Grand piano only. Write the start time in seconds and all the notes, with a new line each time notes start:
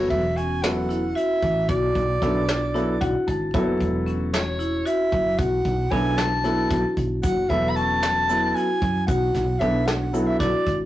Already playing: F#3 B3 E4 A4
0.63 F#3 B3 E4 A4
2.22 F#3 B3 E4 A4
2.74 F#3 B3 E4 A4
3.01 F#5
3.27 A5
3.54 F#3 B3 E4 A4
5.91 F#3 B3 E4 A4
6.44 F#3 B3 E4 A4
7.49 F#3 B3 E4 A4
8.29 F#3 B3 E4 A4
9.60 F#3 B3 E4 A4
10.13 F#3 B3 E4 A4